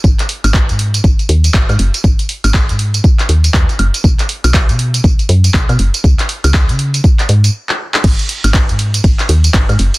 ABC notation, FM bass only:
X:1
M:4/4
L:1/16
Q:"Swing 16ths" 1/4=120
K:G#m
V:1 name="FM bass" clef=bass
G,,, z2 G,,,2 G,,3 G,,, z D,,2 G,,, G,, F,,, z | G,,, z2 G,,,2 G,,3 z2 D,,2 D,, z F,,, z | B,,, z2 B,,,2 B,,3 B,,, z F,,2 B,,, B,, F,,, z | C,, z2 C,,2 C,3 z2 G,,2 z4 |
G,,, z2 G,,,2 G,,3 G,,, z D,,2 G,,, G,, F,,, z |]